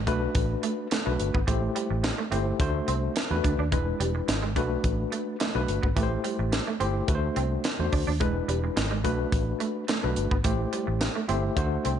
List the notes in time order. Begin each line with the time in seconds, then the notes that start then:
0.07 B1 A3 D4 F#4 B4, kick, closed hi-hat
0.35 A1, kick, closed hi-hat
0.63 A3, closed hi-hat
0.91 A3, snare, closed hi-hat
1.06 B1 A3 D4 F#4 B4, muted clean electric guitar stroke
1.20 G1, closed hi-hat
1.34 G#1 B3, kick
1.47 A1 A3 E4 G4 C5, kick, closed hi-hat
1.76 G3, closed hi-hat
1.90 A1, muted clean electric guitar stroke
2.03 muted clean electric guitar stroke, snare, closed hi-hat
2.18 A3
2.31 G1 A3 C4 E4 G4 C5, closed hi-hat
2.60 D2 A3 D4 F#4 C5, kick, closed hi-hat
2.88 C2 C4, closed hi-hat
3.16 muted clean electric guitar stroke, snare, closed hi-hat
3.31 E2 A3 D4 F#4 B4
3.44 D2 D4, kick, closed hi-hat
3.59 D#2 D4
3.72 E1 G#3 D4 E4 B4, kick, closed hi-hat
4.00 E1 G3, closed hi-hat
4.15 muted clean electric guitar stroke
4.28 G#1, muted clean electric guitar stroke, snare, closed hi-hat
4.43 G#3
4.56 B1 A3 D4 F#4 B4, kick, closed hi-hat
4.84 A1, kick, closed hi-hat
5.12 A3, closed hi-hat
5.40 A3, snare, closed hi-hat
5.55 B1 A3 D4 F#4 B4, muted clean electric guitar stroke
5.68 G1, closed hi-hat
5.83 G#1 B3, kick
5.96 A1 A3 E4 G4 B4, kick, closed hi-hat
6.03 C5
6.24 G3, closed hi-hat
6.39 A1, muted clean electric guitar stroke
6.52 muted clean electric guitar stroke, snare, closed hi-hat
6.67 A3
6.80 G1 A3 C4 E4 G4 C5, closed hi-hat
7.08 D2 A3 D4 F#4 B4, kick, closed hi-hat
7.15 C5
7.36 C2 C4, closed hi-hat
7.64 muted clean electric guitar stroke, snare, closed hi-hat
7.79 E2 A3 D4 F#4 C5
7.93 D2 D4, kick, open hi-hat
8.07 D#2 D4
8.20 E1 G#3 D4 E4 B4, kick, closed hi-hat
8.48 E1 G3, closed hi-hat
8.64 muted clean electric guitar stroke
8.76 G#1, muted clean electric guitar stroke, snare, closed hi-hat
8.91 G#3
9.04 B1 A3 D4 F#4 B4, kick, closed hi-hat
9.32 A1, kick, closed hi-hat
9.60 A3, closed hi-hat
9.88 A3, snare, closed hi-hat
10.03 B1 A3 D4 F#4 B4, muted clean electric guitar stroke
10.16 G1, closed hi-hat
10.31 G#1 B3, kick
10.44 A1 A3 E4 G4 C5, kick, closed hi-hat
10.73 G3, closed hi-hat
10.87 A1, muted clean electric guitar stroke
11.01 muted clean electric guitar stroke, snare, closed hi-hat
11.15 A3
11.28 G1 A3 C4 E4 G4 C5 E5, closed hi-hat
11.56 D2 A3 D4 F#4 C5 F#5, kick, closed hi-hat
11.85 C2 C4 G5, closed hi-hat